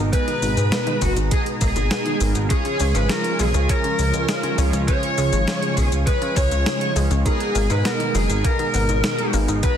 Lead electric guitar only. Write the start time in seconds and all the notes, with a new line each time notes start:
0.13 B4
1.02 F#4
1.32 G#4
1.62 G#4
2.50 G#4
2.95 B4
3.09 A#4
3.39 G#4
3.69 A#4
4.88 C#5
5.77 G#4
6.06 B4
6.36 C#5
7.26 G#4
7.70 B4
7.85 A#4
8.15 G#4
8.45 A#4
9.63 B4